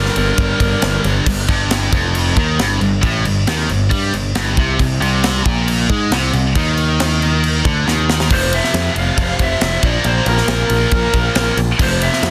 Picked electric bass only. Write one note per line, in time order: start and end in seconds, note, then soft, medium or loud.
0.17 0.31 G1 medium
0.38 0.53 G1 medium
0.60 0.75 G1 medium
0.83 0.97 G1 medium
1.05 1.19 G1 loud
1.26 1.47 G1 medium
1.48 1.90 G1 loud
1.92 2.34 F1 loud
2.36 2.57 D#2 medium
2.58 2.79 G1 medium
2.81 3.01 G1 medium
3.03 3.24 A1 loud
3.25 3.46 G1 medium
3.47 3.68 D#2 loud
3.69 3.90 G1 medium
3.91 4.12 G2 loud
4.13 4.34 G1 medium
4.35 4.56 G1 loud
4.57 4.78 C2 loud
4.79 5.00 C2 medium
5.00 5.42 C2 loud
5.45 5.86 A#1 loud
5.90 6.10 G#2 loud
6.11 6.32 C2 medium
6.33 6.54 C2 medium
6.55 7.61 D#2 loud
7.65 7.85 D2 medium
7.87 8.28 D#2 loud
8.30 8.59 F1 loud
8.74 8.89 F2 medium
8.95 9.10 F1 medium
9.17 9.32 F1 loud
9.39 9.54 F1 medium
9.61 9.76 F1 loud
9.83 9.98 A#1 loud
10.05 10.19 A#1 loud
10.26 10.41 A#1 loud
10.48 10.63 A#1 medium
10.70 10.85 A#1 loud
10.92 11.06 A#1 loud
11.13 11.28 A#1 loud
11.35 11.50 A#1 medium
11.57 11.72 A#1 loud
11.79 12.08 F1 loud
12.23 12.30 F2 medium